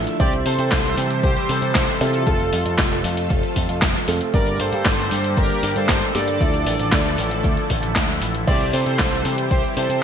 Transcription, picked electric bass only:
0.20 C2
0.46 C3
0.59 C3
0.72 C2
0.97 C3
1.23 C2
1.49 C3
1.62 C3
1.75 C2
2.01 C3
2.27 F1
2.53 F2
2.65 F2
2.79 F1
3.04 F2
3.30 F1
3.56 F2
3.69 F2
3.82 F1
4.08 F2
4.34 G1
4.60 G2
4.73 G2
4.86 G1
5.11 G2
5.37 G1
5.63 G2
5.76 G2
5.89 G1
6.15 G2
6.41 D2
6.66 A1
6.79 A1
6.92 D2
7.18 A1
7.44 D2
7.70 A1
7.83 A1
7.96 D2
8.22 A1
8.48 C2
8.73 C3
8.86 C3
8.99 C2
9.25 C3
9.51 C2
9.77 C3
9.90 C3

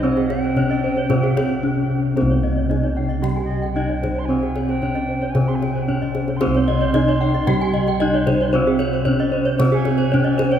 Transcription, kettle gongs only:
Already playing: C2
0.04 C4
1.11 C3
1.63 C#4
2.16 C4
2.21 C2
2.70 C#4
3.75 C#4
4.29 C4
5.35 C3
5.88 C#4
6.41 C4
6.46 C2
6.94 C#4
8.01 C#4
8.54 C4
9.07 C#4
9.60 C3
10.13 C#4

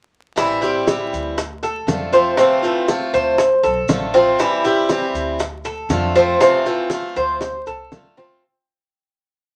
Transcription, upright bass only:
0.38 A1
1.13 D2
1.87 F2
3.13 D2
3.63 B1
3.88 A1
5.14 D2
5.89 F2
7.16 D2
7.66 C2
7.92 D2

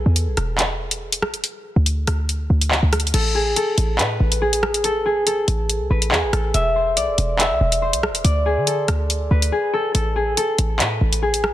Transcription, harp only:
Already playing: A4 B4
3.14 A4
3.35 G#4
3.56 A4
3.99 B4
4.42 G#4
4.84 A4
5.06 G#4
5.27 A4
5.91 B4
6.12 G#4
6.33 A4
6.54 E5
6.76 C5
6.97 D5
7.39 E5
7.82 C5
8.24 D5
8.46 G#4
8.67 A4
9.31 B4
9.52 G#4
9.73 A4
9.94 A4
10.16 G#4
10.37 A4
10.80 B4
11.22 G#4

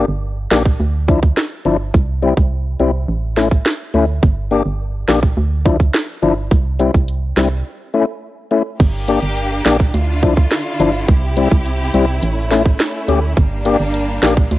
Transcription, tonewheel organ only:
0.51 A#3 D4 G4
1.08 F3 D4 E4
1.65 F3 D4 E4
2.22 G3 C4 E4
2.80 G3 C4 E4
3.37 A3 C#4 E4
3.94 A3 C#4 E4
4.51 A#3 D4 G4
5.08 A#3 D4 G4
5.65 F3 D4 E4
6.22 F3 D4 E4
6.79 G3 C4 E4
7.37 G3 C4 E4
7.94 A3 C#4 E4
8.51 A3 C#4 E4
9.08 A#3 D4 G4
9.65 A#3 D4 G4
10.22 F3 D4 E4
10.80 F3 D4 E4
11.37 G3 C4 E4
11.94 G3 C4 E4
12.51 A3 C#4 E4
13.08 A3 C#4 G4
13.65 A#3 D4 G4
14.22 A#3 D4 G4

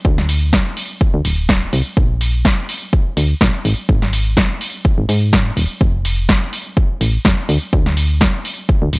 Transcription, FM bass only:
0.05 D2
1.14 D2
1.25 D1
1.73 C2
1.97 A#1
3.17 D2
3.41 A#1
3.65 G#1
3.89 G#1
4.98 G#1
5.09 G#2
5.57 D#1
5.81 F1
7.01 A1
7.25 F1
7.49 D2
7.73 D2
8.82 D2
8.93 D1

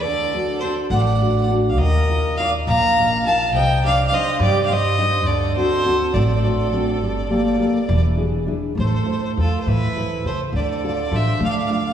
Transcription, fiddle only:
0.01 D5
0.60 C5
0.90 F#5
0.98 F#5
1.05 F#5
1.13 F#5
1.23 F#5
1.29 F#5
1.38 F#5
1.43 F#5
1.70 F5
1.78 D#5
2.37 F5
2.67 A#5
3.26 A5
3.54 G5
3.85 F5
4.07 F5
4.14 D#5
4.41 D5
4.66 F5
4.73 D#5
5.26 D5
5.56 C5
6.14 D5
6.20 D5
6.28 D5
6.35 D5
6.43 D5
6.52 D5
6.59 D5
6.65 D5
6.71 D5
6.82 D5
6.88 D5
6.93 D5
7.03 D5
7.08 D5
7.17 D5
7.25 D5
7.31 D5
7.37 D5
7.46 D5
7.53 D5
7.61 D5
7.68 D5
7.74 D5
7.82 D5
7.87 D5
7.97 D5
8.80 C5
8.86 C5
8.94 C5
9.03 C5
9.11 C5
9.19 C5
9.24 C5
9.40 A4
9.60 C5
9.68 B4
10.27 C5
10.56 D5
10.63 D5
10.70 D5
10.77 D5
10.87 D5
10.95 D5
11.01 D5
11.16 E5
11.44 F5
11.51 F5
11.58 F5
11.66 F5
11.72 F5
11.79 F5
11.87 F5

